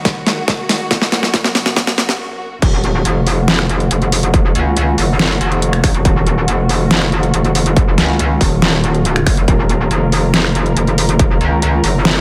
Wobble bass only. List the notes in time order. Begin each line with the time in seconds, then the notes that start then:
2.62 D#1
3.05 F1
3.91 F1
4.55 C#2
4.98 F#1
5.41 F1
5.84 A#1
5.95 D#1
6.05 D#1
6.48 F1
7.34 F1
7.98 C#2
8.41 D#1
9.27 F#1
9.48 D#1
9.91 F1
10.77 F1
11.41 C#2
11.84 F#1